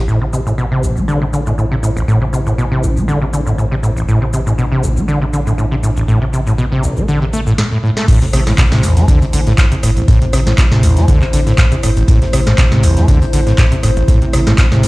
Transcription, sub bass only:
0.08 7.58 A1 medium
8.33 8.54 A1 loud
8.72 8.81 A2 loud
8.83 9.04 E2 medium
9.33 9.54 A1 loud
9.83 10.04 G1 loud
10.33 10.54 A1 loud
10.72 10.81 A2 loud
10.83 11.04 E2 medium
11.33 11.54 A1 loud
11.83 12.04 G1 loud
12.33 12.54 A1 loud
12.72 12.81 A2 loud
12.83 13.04 E2 medium
13.33 13.54 A1 loud
13.83 14.04 G1 loud
14.33 14.54 A1 loud
14.72 14.81 A2 loud
14.83 14.88 E2 medium

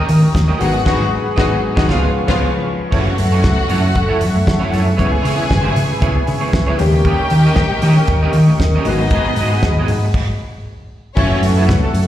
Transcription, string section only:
0.00 0.31 A#4 medium
0.00 0.31 A#5 loud
0.60 0.84 F#4 medium
0.60 0.84 F#5 medium
0.85 1.04 F#4 loud
0.85 1.03 F#5 medium
1.37 1.55 F#4 medium
1.37 1.55 F#5 medium
1.77 1.87 F#4 medium
1.77 1.87 F#5 medium
1.88 2.06 F4 medium
1.88 2.06 F5 medium
2.28 2.46 F4 medium
2.28 2.46 F5 medium
2.92 4.69 F#4 medium
2.92 4.69 F#5 loud
4.98 6.50 G#4 medium
4.98 6.50 G#5 loud
6.77 8.55 G4 medium
6.77 8.55 G5 loud
8.85 9.86 D#4 medium
8.85 9.86 D#5 loud
11.15 11.37 C#4 loud
11.15 11.37 C#5 loud
11.56 11.66 B3 medium
11.56 11.66 B4 medium
11.81 11.92 A3 medium
11.81 11.91 A4 medium

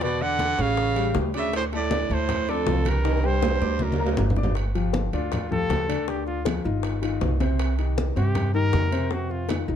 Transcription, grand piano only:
0.01 0.17 B2 medium
0.01 0.17 B3 medium
0.01 0.17 B4 medium
0.21 0.52 D3 medium
0.21 0.52 D4 medium
0.21 0.52 D5 medium
0.58 0.89 C#4 medium
0.58 0.89 C#5 medium
0.58 0.89 C#6 medium
0.96 1.27 G3 medium
0.96 1.27 G4 medium
0.96 1.27 G5 medium
1.34 1.65 D4 medium
1.34 1.66 D5 medium
1.34 1.66 D6 medium
1.72 1.88 A3 medium
1.72 1.88 A4 medium
1.72 1.88 A5 medium
1.91 2.07 D4 medium
1.91 2.07 D5 medium
1.91 2.07 D6 medium
2.11 2.42 A3 medium
2.11 2.42 A4 medium
2.11 2.42 A5 medium
2.48 2.64 D4 medium
2.48 2.64 D5 medium
2.48 2.64 D6 medium
2.67 2.98 F3 medium
2.67 2.98 F4 medium
2.67 2.98 F5 medium
3.04 3.20 D#3 medium
3.04 3.20 D#4 medium
3.04 3.20 D#5 medium
3.24 3.55 G3 medium
3.24 3.55 G4 medium
3.24 3.55 G5 medium
3.61 3.92 D4 medium
3.61 3.93 D5 medium
3.61 3.93 D6 medium
3.99 4.30 A#3 medium
3.99 4.31 A#4 medium
3.99 4.31 A#5 medium
4.37 4.53 D4 medium
4.37 4.53 D5 medium
4.37 4.53 D6 medium
4.75 5.06 F3 medium
4.75 5.06 F4 medium
4.75 5.06 G4 medium
5.13 5.44 D3 medium
5.13 5.44 D4 medium
5.13 5.45 D5 medium
5.51 5.82 F3 medium
5.51 5.82 F4 medium
5.51 5.82 G4 medium
5.88 6.04 D3 medium
5.88 6.04 D4 medium
5.88 6.05 D5 medium
6.07 6.39 D3 medium
6.07 6.39 D4 medium
6.07 6.39 D5 medium
6.45 6.61 F3 medium
6.45 6.61 F4 medium
6.45 6.61 G#4 medium
6.64 6.96 D#3 medium
6.64 6.96 D#4 medium
6.64 6.96 F4 medium
7.02 7.33 D#3 medium
7.02 7.34 D#4 medium
7.02 7.34 F4 medium
7.40 7.71 C3 medium
7.40 7.72 C4 medium
7.40 7.72 C5 medium
7.78 8.09 D#3 medium
7.78 8.10 D#4 medium
7.78 8.10 G4 medium
8.16 8.47 C3 medium
8.16 8.47 C4 medium
8.16 8.48 C5 medium
8.54 8.85 D#3 medium
8.54 8.85 D#4 medium
8.54 8.86 G4 medium
8.91 9.07 C3 medium
8.91 9.08 C4 medium
8.91 9.08 C5 medium
9.11 9.42 C3 medium
9.11 9.42 C4 medium
9.11 9.42 C5 medium
9.49 9.65 D#3 medium
9.49 9.65 D#4 medium
9.49 9.65 F4 medium
9.68 9.76 D#3 medium
9.68 9.76 D#4 medium
9.68 9.76 F4 medium

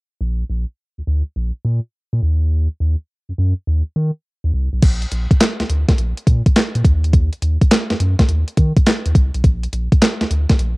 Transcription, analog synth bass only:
0.21 0.43 A#1 loud
0.50 0.65 A#1 medium
0.98 1.02 D2 soft
1.07 1.22 D2 medium
1.36 1.51 A#1 medium
1.65 1.80 A#2 medium
2.13 2.21 A#2 medium
2.23 2.68 D#2 loud
2.80 2.96 D#2 medium
3.29 3.33 F#2 soft
3.38 3.53 F#2 medium
3.67 3.82 D#2 loud
3.96 4.11 D#3 loud
4.44 4.52 D#2 medium
4.54 4.69 C2 medium
4.73 4.80 B1 medium
4.83 5.05 A#1 loud
5.12 5.27 A#1 medium
5.60 5.64 D2 medium
5.70 5.85 D2 medium
5.98 6.13 A#1 loud
6.27 6.42 A#2 medium
6.75 6.83 A#2 loud
6.85 7.30 D#2 loud
7.42 7.57 D#2 medium
7.90 7.94 F#2 soft
8.00 8.15 F#2 medium
8.29 8.44 D#2 loud
8.58 8.73 D#3 medium
9.06 9.13 D#2 medium
9.15 9.30 C2 medium
9.35 9.42 B1 medium
9.44 9.67 A#1 loud
9.73 9.88 A#1 medium
10.21 10.25 D2 medium
10.31 10.46 D2 loud
10.59 10.74 A#1 medium

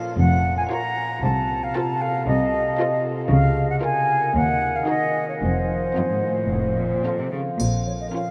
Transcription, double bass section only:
0.18 0.60 F1 medium
1.24 1.65 C2 medium
2.28 2.68 C2 medium
3.31 3.72 C#2 medium
4.35 4.77 D#2 medium
5.42 5.85 F1 medium
6.51 6.94 F1 medium
7.60 8.02 A#1 medium

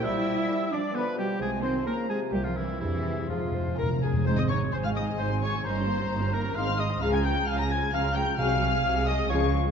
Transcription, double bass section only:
0.04 0.40 B1 medium
1.39 1.76 C2 medium
2.32 2.71 C2 medium
2.81 3.19 F2 medium
4.26 4.68 G#1 medium
4.73 5.13 G#1 medium
5.19 5.60 G#1 medium
5.65 6.05 G1 medium
6.10 6.51 G1 medium
6.56 6.96 G#1 medium
7.01 7.42 C#2 medium
7.48 7.88 C#2 medium
7.94 8.33 C#2 medium
8.39 8.79 C2 medium
8.84 9.24 C2 medium
9.30 9.70 C#2 medium

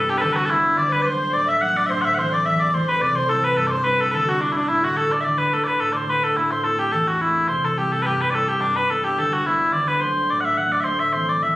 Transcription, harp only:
0.00 0.27 G2 medium
0.00 0.48 G3 soft
0.00 1.05 A3 soft
0.00 0.49 B3 soft
0.00 0.50 D4 soft
0.00 2.00 E4 soft
0.22 0.76 D2 medium
0.49 0.83 G3 soft
0.49 2.25 B3 soft
0.49 1.07 D4 medium
0.77 1.94 D2 medium
1.04 1.60 F#3 soft
1.04 1.62 A3 soft
1.04 1.62 D4 soft
1.33 1.88 A2 medium
1.61 1.94 F#3 soft
1.61 2.18 A3 soft
1.61 4.40 D4 medium
1.90 2.50 A2 medium
2.18 2.72 E3 soft
2.18 2.74 A3 soft
2.18 2.74 C4 soft
2.46 3.06 E2 medium
2.73 3.06 E3 soft
2.73 5.52 A3 soft
2.73 3.29 C4 medium
3.01 3.62 C3 medium
3.28 3.83 G3 soft
3.28 3.84 C4 soft
3.28 3.84 E4 medium
3.56 4.18 G2 medium
3.84 4.18 G3 soft
3.84 6.64 C4 soft
3.84 4.40 E4 medium
4.12 4.73 D3 medium
4.40 4.96 D4 soft
4.40 4.96 E4 soft
4.40 4.96 F#4 soft
4.68 5.29 A2 medium
4.96 5.52 D4 soft
4.96 6.64 E4 soft
4.96 5.53 F#4 soft
5.24 5.86 D3 medium
5.52 6.08 A3 soft
5.81 6.35 A2 soft
6.08 6.63 A3 soft
6.08 8.89 D4 soft
6.08 7.83 F#4 soft
6.36 6.98 A2 medium
6.63 7.20 A3 soft
6.63 7.20 C4 soft
6.63 7.21 E4 soft
6.92 7.54 E2 medium
7.20 10.02 A3 soft
7.20 7.77 C4 soft
7.20 7.77 E4 medium
7.49 8.10 C3 medium
7.77 8.31 G3 soft
7.77 8.32 C4 soft
7.77 8.33 E4 soft
8.05 8.59 G2 medium
8.32 8.67 G3 soft
8.32 8.96 C4 soft
8.32 10.95 E4 soft
8.61 9.23 G2 medium
8.89 9.45 G3 soft
8.89 9.46 B3 soft
8.89 9.46 D4 soft
9.17 9.72 D2 medium
9.46 9.79 G3 soft
9.46 11.21 B3 soft
9.46 10.03 D4 soft
9.73 10.91 D2 medium
10.01 10.56 F#3 soft
10.01 10.58 A3 soft
10.01 10.58 D4 soft
10.31 10.85 A2 medium
10.57 10.91 F#3 soft
10.57 11.14 A3 soft
10.57 11.56 D4 soft
10.86 11.47 A2 medium
11.14 11.56 E3 soft
11.14 11.56 A3 soft
11.14 11.56 C4 soft
11.42 11.56 E2 medium

